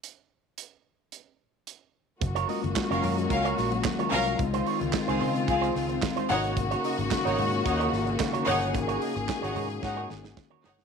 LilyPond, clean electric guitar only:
\new Staff \with { instrumentName = "Clean electric guitar" } { \time 4/4 \key aes \mixolydian \tempo 4 = 110 r1 | r16 <f' bes' des''>16 <f' bes' ees''>16 r8 <f' bes' des''>16 <f' bes' des''>16 r8 <f' bes' des''>16 <f' bes' des''>16 r8 <f' bes' des''>16 r8 | r16 <ees' f' c''>16 <ees' f' des''>16 r8 <ees' f' c''>16 <ees' f' c''>16 r8 <ees' f' c''>16 r8. <ees' f' c''>16 r8 | r16 <ges' bes' des''>16 <ges' bes' ees''>16 r8 <ges' bes' des''>16 <ges' bes' des''>16 r8 <ges' bes' des''>16 r8. <ges' bes' des''>16 r8 |
r16 <ges' bes' des''>16 <ges' bes' ees''>16 r8 <ges' bes' des''>16 <ges' bes' des''>16 r8 <ges' bes' des''>16 r8. <ges' bes' des''>16 r8 | }